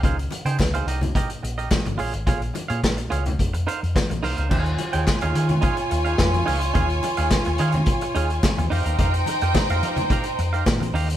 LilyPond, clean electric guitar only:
\new Staff \with { instrumentName = "Clean electric guitar" } { \time 4/4 \key ees \mixolydian \tempo 4 = 107 <ees' aes' c'' f''>16 r8 <ees' aes' c'' g''>16 r16 <ees' aes' c'' f''>16 <ees' g' bes' ees''>16 r16 <ees' g' bes' ees''>16 r8 <ees' g' bes' ees''>16 r8 <f' aes' des'' f''>16 r16 | <f' aes' des'' f''>16 r8 <f' aes' des'' f''>16 r8 <f' aes' des'' f''>16 r8. <ees' bes' c'' f''>16 r8. <ees' bes' c'' f''>16 <ees' bes' c'' f''>16 | <ees' aes' des'' f''>16 r8 <ees' aes' des'' g''>16 r16 <ees' aes' des'' f''>16 <ees' aes' des'' f''>16 r16 <ees' aes' des'' f''>16 r8 <ees' aes' des'' f''>16 r8 <ees' aes' des'' f''>16 r16 | <ees' aes' des'' f''>16 r8 <ees' aes' des'' f''>16 r8 <ees' aes' des'' f''>16 r8. <ees' aes' des'' f''>16 r8. <ees' g' bes' f''>16 <ees' g' bes' f''>16 |
<ees' g' bes' f''>16 r8 <ees' g' bes' g''>16 r16 <ees' g' bes' f''>16 <ees' g' bes' f''>16 r16 <ees' g' bes' f''>16 r8 <ees' g' bes' f''>16 r8 <ees' g' bes' f''>16 r16 | }